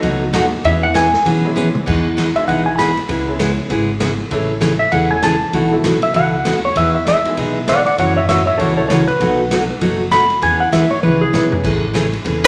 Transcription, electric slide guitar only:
2.36 E5
2.48 F#5
2.66 G#5
2.79 B5
4.79 E5
4.92 F#5
5.11 G#5
5.24 A5
6.03 E5
6.16 F#5
6.65 C#5
6.77 E5
6.95 E5
7.08 E5
7.69 D5 F#5
7.86 D5 F#5
7.99 C#5 F#5
8.16 C#5 E5
8.29 C#5 E5
8.46 C#5 E5
8.58 A4 C#5
8.77 A4 C#5
8.88 A4 C#5
9.08 B4
10.12 B5
10.43 G#5
10.60 F#5
10.73 E5
10.91 C#5
11.03 B4
11.21 G#4

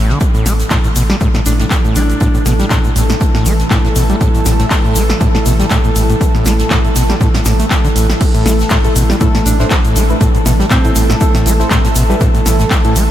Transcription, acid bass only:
Already playing: A2
0.10 D3
0.35 A2
0.46 A3
0.71 A2
0.85 A2
0.96 B2
1.10 G3
1.21 A2
1.35 A2
1.46 A2
1.60 A2
1.85 A2
1.96 A3
2.21 A2
2.35 A2
2.46 B2
2.60 G3
2.71 A2
2.85 A2
2.96 A2
3.10 A2
3.35 A2
3.46 A3
3.71 A2
3.85 A2
3.96 B2
4.10 G3
4.21 A2
4.35 A2
4.46 A2
4.60 A2
4.85 A2
4.96 A3
5.21 A2
5.35 A2
5.46 B2
5.60 G3
5.71 A2
5.85 A2
5.96 A2
6.10 A2
6.35 A2
6.46 A3
6.71 A2
6.85 A2
6.96 B2
7.10 G3
7.21 A2
7.35 A2
7.46 A2
7.60 A3
7.85 D3
7.96 A2
8.35 A2
8.46 A3
8.71 A2
8.85 A2
8.96 B2
9.10 G3
9.21 A2
9.35 A2
9.46 A2
9.60 A2
9.85 A2
9.96 A3
10.21 A2
10.35 A2
10.46 B2
10.60 G3
10.71 A2
10.85 A2
10.96 A2
11.10 A2
11.35 A2
11.46 A3
11.71 A2
11.85 A2
11.96 B2
12.10 G3
12.21 A2
12.35 A2
12.46 A2
12.60 A2
12.85 A2
12.96 A3

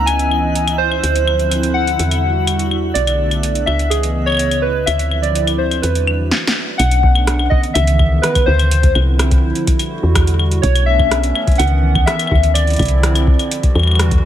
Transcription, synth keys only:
0.06 G#5
0.78 C5
1.74 F#5
2.94 D5
3.66 E5
3.90 G#4
4.26 C#5
4.62 B4
4.86 E5
5.22 D5
5.58 C5
5.82 B4
6.78 F#5
7.50 D#5
7.74 E5
8.22 B4
8.46 C5
10.62 C#5
10.86 E5
11.58 F#5
12.06 E5
12.54 D5

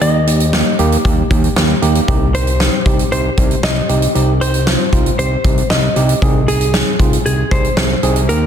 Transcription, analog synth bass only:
0.01 D#2
0.79 D#2
1.05 D#2
1.31 D#2
1.57 D#2
1.82 D#2
2.08 C2
2.86 C2
3.12 C2
3.38 C2
3.64 C2
3.89 C2
4.15 C2
4.93 C2
5.19 C2
5.45 C2
5.70 C2
5.96 C2
6.22 C2
7.00 C2
7.25 C2
7.51 C2
7.77 C2
8.03 C2
8.29 D#2

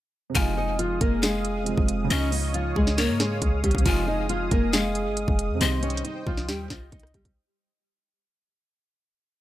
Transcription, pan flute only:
0.35 G#5
1.23 F5
2.11 D#5
2.98 C#5
3.86 G#5
4.73 F5
5.61 D#5
6.49 G5
6.70 D#5

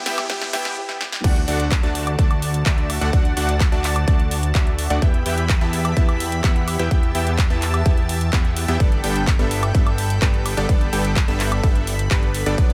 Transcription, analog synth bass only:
0.06 E2
0.30 E2
0.53 E2
1.24 D2
1.48 D2
1.83 D2
2.19 D2
2.66 D2
3.01 D2
3.13 D2
3.37 D2
3.72 D2
4.08 D2
4.55 D2
4.90 D2
5.02 E2
5.26 E2
5.61 E2
5.97 E2
6.44 E2
6.79 E2
6.91 E2
7.15 E2
7.50 E2
7.86 E2
8.33 E2
8.68 E2
8.80 G1
9.04 G1
9.39 G1
9.75 G1
10.22 G1
10.57 G1
10.69 G1
10.93 G1
11.28 G1
11.63 G1
12.11 G1
12.46 G1
12.58 B1

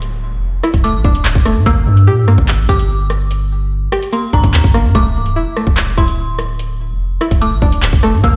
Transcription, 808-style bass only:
Already playing: D1
0.33 F1
0.74 D1
0.94 A1
1.04 D1
1.25 D1
1.35 F1
1.56 A2
1.66 G1
1.87 G2
2.07 A#2
2.23 G2
2.38 G1
2.59 A#1
2.69 G1
4.33 G1
4.44 G1
4.54 D2
4.64 G1
4.85 G2
4.95 D1
5.16 C1
5.36 E1
5.67 D1
5.87 F1
5.98 D1
6.90 F1
7.31 D1
7.52 A1
7.62 D1
7.83 D1
7.93 F1
8.13 A2
8.24 G1

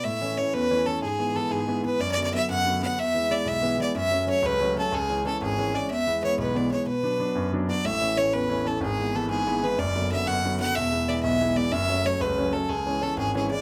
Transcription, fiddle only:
0.04 E5
0.38 C#5
0.54 B4
0.86 A4
1.02 G#4
1.36 A4
1.52 G#4
1.86 B4
2.00 D5
2.12 D5
2.24 D5
2.34 E5
2.50 F#5
2.83 F#5
2.99 E5
3.31 D5
3.48 E5
3.82 D5
3.96 E5
4.30 C#5
4.46 B4
4.78 A4
4.94 G#4
5.27 A4
5.42 G#4
5.75 D5
5.91 E5
6.24 C#5
6.39 B4
6.57 D5
6.72 C#5
6.88 B4
7.69 D5
7.85 E5
8.17 C#5
8.33 B4
8.67 A4
8.83 G#4
9.16 A4
9.30 G#4
9.63 B4
9.79 D5
10.12 E5
10.27 F#5
10.60 F#5
10.75 E5
11.08 D5
11.23 E5
11.56 D5
11.72 E5
12.06 C#5
12.21 B4
12.53 A4
12.69 G#4
13.02 A4
13.18 G#4
13.36 G#4
13.51 D5

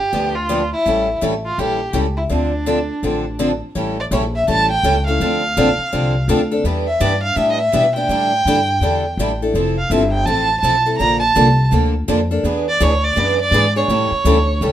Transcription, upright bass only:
0.13 D2
0.86 A1
1.22 A1
1.58 A#1
1.93 C#2
2.30 D2
3.03 A1
3.75 A1
4.11 A#1
4.48 A1
4.83 C#2
5.20 D2
5.57 A#1
5.78 muted upright bass stroke
5.93 C2
6.28 D2
6.64 E2
7.00 G2
7.36 A2
7.73 B2
8.09 A2
8.45 G2
8.80 E2
9.17 A1
9.54 F1
9.90 G1
10.26 A1
10.63 B1
11.00 A#1
11.36 C2
11.72 D2
12.08 F2
12.43 E2
12.81 D2
13.16 F#2
13.51 G#2
13.88 A2
14.12 muted upright bass stroke
14.25 D2
14.61 C#2

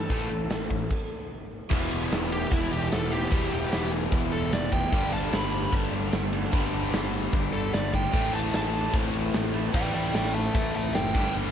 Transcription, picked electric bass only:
0.10 A1
0.30 A1
0.50 A1
0.71 A1
1.71 E1
1.92 E1
2.12 E1
2.52 E1
2.72 E1
2.93 E1
3.32 E1
3.53 E1
3.73 E1
4.13 E1
4.33 E1
4.53 F1
4.93 G1
5.13 G1
5.33 G1
5.73 G1
5.92 G1
6.13 G1
6.53 G1
6.73 G1
6.93 G1
7.33 G1
7.54 G1
7.73 G1
8.14 A1
8.34 A1
8.54 A1
8.94 A1
9.14 A1
9.34 A1
9.74 A1
9.95 A1
10.14 A1
10.55 A1
10.76 A1
10.96 F#1
11.15 G1
11.36 G1

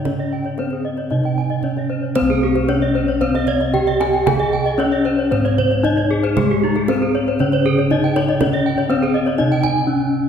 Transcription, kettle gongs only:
Already playing: C#3
0.07 C#4
0.59 C#4
1.12 C3
1.64 C#4
2.16 C4
2.21 C2
3.74 C#4
4.27 G#4
4.80 C#4
5.32 G#2
5.85 C#4
6.37 G#4
6.90 C#4
7.40 C#3
7.92 C#4
8.41 C#4
8.91 C#4
9.40 C3
9.88 C#4

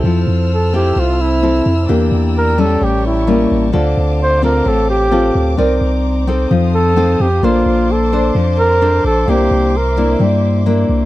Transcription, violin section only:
0.04 C5 A5 E6 F6
1.88 D5 G5 A#5
2.82 A#4 A5 C#6
3.74 C5 F5 D6
5.58 C5 A#5
6.50 F5 A5 D#6
7.42 A5 C6 D6
9.27 E5

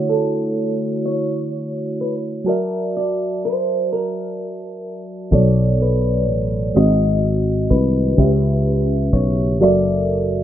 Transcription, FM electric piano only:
Already playing: D3 A3 E4 F#4 C#5
2.44 F#3 F#4 A#4 A5
2.49 D5 E5
5.31 B2 F#3 A4 C#5 D5
6.75 D#3 G#3 C4 F#4 D#5
8.17 C#3 C#4 G4 B4 E5
9.60 F#3 F#4 A4 A#4 D5 E5

